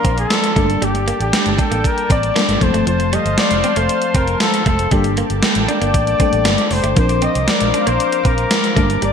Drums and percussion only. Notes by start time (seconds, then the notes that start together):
0.05 kick, closed hi-hat
0.18 closed hi-hat
0.30 snare, closed hi-hat
0.44 closed hi-hat
0.56 kick, closed hi-hat
0.70 closed hi-hat
0.82 closed hi-hat
0.95 closed hi-hat
1.08 closed hi-hat
1.21 closed hi-hat
1.33 snare, closed hi-hat
1.46 closed hi-hat
1.59 kick, closed hi-hat
1.72 closed hi-hat
1.84 kick, closed hi-hat
1.98 closed hi-hat
2.10 kick, closed hi-hat
2.23 closed hi-hat
2.36 snare, closed hi-hat
2.49 closed hi-hat
2.61 kick, closed hi-hat
2.74 closed hi-hat
2.87 closed hi-hat
3.00 closed hi-hat
3.13 closed hi-hat
3.26 closed hi-hat
3.38 snare, closed hi-hat
3.51 closed hi-hat
3.64 closed hi-hat
3.76 closed hi-hat
3.89 closed hi-hat
4.02 closed hi-hat
4.15 kick, closed hi-hat
4.28 closed hi-hat
4.40 snare, closed hi-hat
4.54 closed hi-hat
4.66 kick, closed hi-hat
4.79 closed hi-hat
4.91 kick, closed hi-hat
5.04 closed hi-hat
5.17 closed hi-hat
5.30 closed hi-hat
5.43 snare, closed hi-hat
5.55 closed hi-hat
5.69 closed hi-hat
5.82 closed hi-hat
5.94 kick, closed hi-hat
6.07 closed hi-hat
6.20 kick, closed hi-hat
6.33 closed hi-hat
6.45 snare, closed hi-hat
6.58 closed hi-hat
6.71 open hi-hat
6.84 closed hi-hat
6.96 kick, closed hi-hat
7.09 closed hi-hat
7.22 closed hi-hat
7.35 closed hi-hat
7.48 snare, closed hi-hat
7.61 closed hi-hat
7.74 closed hi-hat
7.87 closed hi-hat
8.00 closed hi-hat
8.12 closed hi-hat
8.25 kick, closed hi-hat
8.38 closed hi-hat
8.51 snare, closed hi-hat
8.64 closed hi-hat
8.77 kick, closed hi-hat
8.90 closed hi-hat
9.02 closed hi-hat